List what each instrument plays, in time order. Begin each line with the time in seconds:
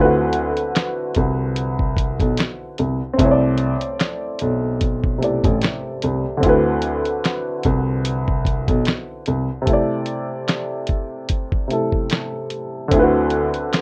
Already playing: grand piano D2, upright piano D3 C4 E4
0.01 upright piano F#4 B4
0.33 closed hi-hat
0.57 closed hi-hat
0.76 snare, clap, closed hi-hat
1.15 grand piano C2, kick, closed hi-hat
1.56 closed hi-hat
1.79 kick
1.97 kick, closed hi-hat
2.20 grand piano B1, kick, closed hi-hat
2.37 snare, clap, closed hi-hat
2.78 grand piano C2, closed hi-hat
3.14 upright piano A3 C4
3.19 grand piano C2, upright piano E4, kick, closed hi-hat
3.25 upright piano C#5
3.31 upright piano D5
3.58 closed hi-hat
3.81 closed hi-hat
4.00 snare, clap, closed hi-hat
4.39 grand piano B1, closed hi-hat
4.81 kick, closed hi-hat
5.04 kick
5.18 upright piano C3 A3 E4
5.23 upright piano D5, closed hi-hat
5.44 grand piano A1, kick, closed hi-hat
5.62 snare, clap, closed hi-hat
6.02 grand piano C2, closed hi-hat
6.37 upright piano D3 C4
6.43 grand piano D2, upright piano E4 F#4, kick, closed hi-hat
6.49 upright piano B4
6.82 closed hi-hat
7.05 closed hi-hat
7.25 snare, clap, closed hi-hat
7.63 grand piano C2, kick, closed hi-hat
8.05 closed hi-hat
8.28 kick
8.45 kick, closed hi-hat
8.68 grand piano B1, kick, closed hi-hat
8.85 snare, clap, closed hi-hat
9.26 grand piano C2, closed hi-hat
9.62 upright piano C3 A3
9.67 upright piano E4, kick, closed hi-hat
9.73 upright piano D5
10.06 closed hi-hat
10.48 snare, clap, closed hi-hat
10.87 kick, closed hi-hat
11.29 kick, closed hi-hat
11.52 kick
11.68 upright piano C3 A3 E4, closed hi-hat
11.73 upright piano A4
11.92 kick
12.10 snare, clap, closed hi-hat
12.50 closed hi-hat
12.88 upright piano D3 C4, kick, closed hi-hat
12.92 grand piano D2, upright piano E4
12.97 upright piano F4 B4
13.03 upright piano F#4
13.30 closed hi-hat
13.54 closed hi-hat
13.73 snare, clap, closed hi-hat